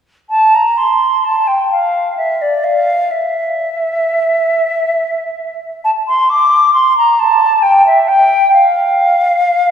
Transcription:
flute
0.30 A5
0.55 A#5
0.77 C6
1.25 A5
1.47 G5
1.71 F5
2.17 E5
2.42 D5
2.64 F5
3.11 E5
5.84 A5
6.08 C6
6.30 D6
6.74 C6
6.98 A#5
7.19 A5
7.62 G5
7.86 E5
8.08 G5
8.53 F5

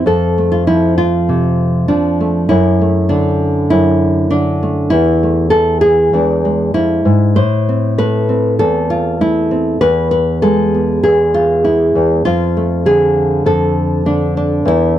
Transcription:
nylon-string guitar
0.06 F2 A4
0.38 A3
0.52 F4
0.67 F3 E4
0.98 F4
1.29 C3
1.88 F3 D4
2.20 A3
2.49 F#2 E4
2.81 A3
3.09 D3 D4
3.70 F#2 E4
4.31 D3 D4
4.63 A3
4.90 E2 E4
5.23 A3
5.50 E3 A4
5.81 G#4
6.13 E2 G#3 D4
6.45 G#3
6.74 F2 E4
7.05 G#2
7.36 A2 C5
7.69 C4
7.98 A3 B4
8.29 C4
8.59 E2 A4
8.90 F4
9.21 A3 E4
9.51 C4
9.81 E2 B4
10.11 B4
10.42 G#3 A4
10.74 B3
11.03 E2 G#4
11.34 F4
11.64 E4
11.95 E2
12.25 F2 F4
12.57 A3
12.86 D3 G#4
13.46 F2 A4
14.06 D3 D4
14.37 D4
14.65 E2 E4

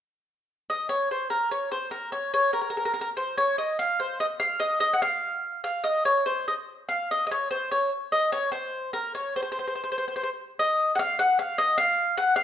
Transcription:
mandolin
0.70 D#5
0.89 C#5
1.11 C5
1.30 A#4
1.51 C#5
1.72 C5
1.91 A#4
2.12 C#5
2.34 C#5
2.53 A#4
2.61 A#4
2.70 A#4
2.77 A#4
2.85 A#4
2.94 A#4
3.01 A#4
3.17 C5
3.38 C#5
3.58 D#5
3.79 F5
4.00 C5
4.20 D#5
4.40 F5
4.60 D#5
4.80 D#5
4.93 F#5
5.02 F5
5.64 F5
5.84 D#5
6.05 C#5
6.26 C5
6.48 D#5
6.89 F5
7.11 D#5
7.27 D#5
7.31 C#5
7.51 C5
7.71 C#5
8.12 D#5
8.32 C#5
8.52 C5
8.93 A#4
9.15 C#5
9.36 C5
9.43 C5
9.52 C5
9.59 C5
9.68 C5
9.75 C5
9.84 C5
9.92 C5
9.98 C5
10.08 C5
10.16 C5
10.23 C5
10.59 D#5
10.95 F5 F#5
11.19 F#5
11.39 F5
11.58 D#5
11.78 F5
12.18 F#5
12.36 F5

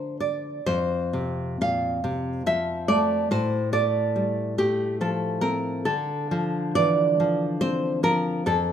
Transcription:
nylon-string guitar
Already playing: D3 F3 A3 C5
0.20 D5
0.66 F2 C5
1.13 C3
1.61 A#2 F5
2.04 C3
2.46 F3 E5
2.88 A3 D5
3.31 A2 C5
3.73 A3 D5
4.16 G3
4.58 A3 G4
5.01 F3 A4
5.41 C4 A#4
5.85 D3 A4
6.31 F3
6.75 E3 D5
7.20 F3
7.61 C4 C5
8.03 F3 A#4
8.46 F2 A4

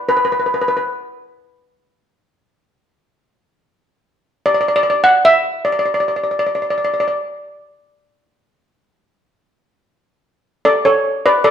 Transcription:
steel pan
0.09 B4
0.17 B4
0.25 B4
0.32 B4
0.40 B4
0.46 B4
0.54 B4
0.61 B4
0.68 B4
0.77 B4
4.46 D5
4.54 D5
4.61 D5
4.68 D5
4.76 D5
4.83 D5
4.90 D5
5.04 F#5
5.25 E5
5.65 D5
5.72 D5
5.79 D5
5.86 D5
5.94 D5
6.00 D5
6.08 D5
6.16 D5
6.24 D5
6.31 D5
6.39 D5
6.46 D5
6.55 D5
6.62 D5
6.70 D5
6.78 D5
6.85 D5
6.94 D5
7.00 D5
7.08 D5
10.65 A4 D5
10.85 A4 C#5
11.26 B4 D5
11.44 A4 D5

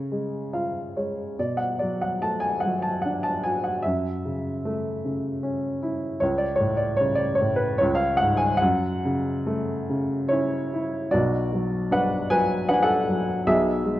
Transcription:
upright piano
Already playing: C#3 C#5
0.12 G#3
0.53 F4 F5
0.96 G#3 C#5
1.39 B2 D5
1.57 F#5
1.79 F#3 D5
2.02 F#5
2.22 A3 A5
2.40 G#5
2.60 F#5
2.65 F#3
2.82 A5
3.02 D4 F#5
3.23 A5
3.44 F#4 G#5
3.64 F#5
3.82 F#2 E5
4.25 C#3
4.65 A3
5.04 C#3
5.43 C#4
5.83 E4
6.20 C#2 C#5
6.38 D5
6.56 C#5
6.60 A2
6.77 D5
6.97 C#3 C#5
7.15 D5
7.35 C#5
7.41 A2
7.56 B4
7.78 C#2 C#5
7.95 F5
8.17 F#5
8.22 G#2
8.37 G#5
8.57 F#5
8.62 F#2
9.05 C#3
9.46 A3
9.90 C#3
10.29 C#4 E4 C#5
10.74 E4
11.11 B1 B2 F#4 D5
11.53 F#3
11.91 D4 B4 F#5
12.30 F#3 B4 G#5
12.69 D4 B4 F#5
12.74 G#5
12.83 A4 F#5
13.09 F#3
13.47 B1 B2 G#4 E5
13.84 G#3

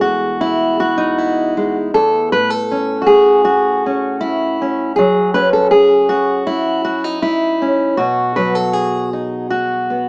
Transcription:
steel-string acoustic guitar
Already playing: E2 G#3
0.01 F#4
0.41 E4
0.80 F#4
0.98 D#4
1.18 E4
1.57 G#3
1.94 E2 A4
2.32 A2 B4
2.50 A4
2.71 C#4
3.02 F#4
3.06 G#4
3.45 F#4
3.86 C#4
4.21 E4
4.61 C#4
4.96 F#3 G#4
5.34 C#4 B4
5.53 A4
5.71 G#4
6.09 F#4
6.47 E4
6.85 F#4
7.04 D#4
7.22 E4
7.62 C#4
7.97 B2 F#4
8.36 F#3 B4
8.55 A4
8.73 G#4
9.13 D#4
9.50 F#4
9.90 B3

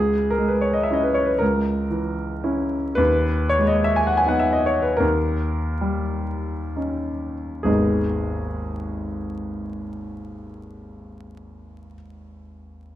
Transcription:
grand piano
Already playing: C#2 G#4
0.30 A#4
0.38 G#3
0.48 B4
0.61 C#5
0.73 D#5
0.83 E5
0.91 C#4 E4 D#5
1.03 B4
1.14 C#5
1.25 B4
1.39 C#2 A#4
1.90 E3
2.44 C#4 E4
2.95 D#2 B4
3.49 C#5
3.59 G#3
3.67 D#5
3.84 E5
3.96 G#5
4.07 F#5
4.17 G#5
4.26 B3 D#4 F#5
4.39 E5
4.53 D#5
4.66 C#5
4.82 B4
4.97 D#2 A#4
5.81 G3
6.76 C#4 D#4
7.63 G#1 D#2 G#3 B3 D#4 G#4

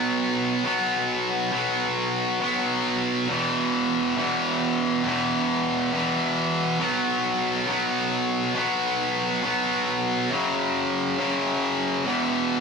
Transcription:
distorted electric guitar
Already playing: B2 F#3 B3
0.65 B2 F#3 B3
1.52 B2 F#3 B3
2.41 B2 F#3 B3
3.28 E2 B2 E3
4.16 E2 B2 E3
5.03 E2 B2 E3
5.92 E2 B2 E3
6.79 B2 F#3 B3
7.66 B2 F#3 B3
8.55 B2 F#3 B3
9.42 B2 F#3 B3
10.30 F#2 C#3 F#3
11.17 F#2 C#3 F#3
12.05 E2 B2 E3

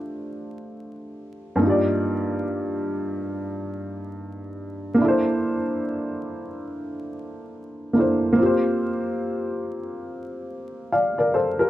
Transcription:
upright piano
Already playing: A3 D4 F4 G4 C5
1.56 G2 A#3
1.61 D#4 F4
1.67 G4 D5
4.95 A#3 D4
5.02 E4 A4
5.08 C5
7.93 A#3 D4 E4
7.98 A4 C5
8.33 A#3 C4
8.39 F4 G4
8.46 C5
10.92 D5 F5
11.18 A#4 D5
11.34 A4 C5
11.59 G4 A#4

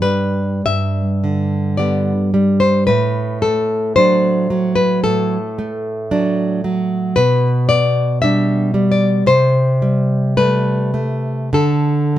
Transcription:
nylon-string guitar
Already playing: G2
0.02 G3 B4
0.66 G2 E5
1.24 D3
1.77 G3 B3 D5
2.34 G3
2.60 C5
2.87 A2 B4
3.42 A3 A4
3.96 F#3 D4 C5
4.50 F#3
4.76 B4
5.04 A2 A4
5.59 A3
6.11 F#3 D4
6.64 F#3
7.16 B2 B4
7.69 B3 D5
8.22 G3 D4 E5
8.74 G3
8.92 D5
9.26 C3 C5
9.82 G3
10.37 G3 A3 B4
10.94 A3
11.53 D3 A4

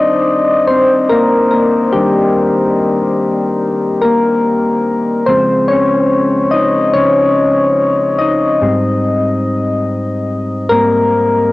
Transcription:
synth keys
Already playing: D#3 G3 C4 D4 D#4 C5 D5 D#5
0.67 C4 C5
1.09 A#3 A#4
1.51 A#3 A#4
1.93 D#3 G3 D4 G4
4.01 A#3 A#4
5.26 C#3 F3 G#3 C4 C5
5.68 C#4 C#5
6.51 D#4 D#5
6.93 C#3 F3 C#4 C5 C#5
8.19 D#4 D#5
8.62 G#2 G3 C4
10.69 G#2 G3 A#3 C4 A#4

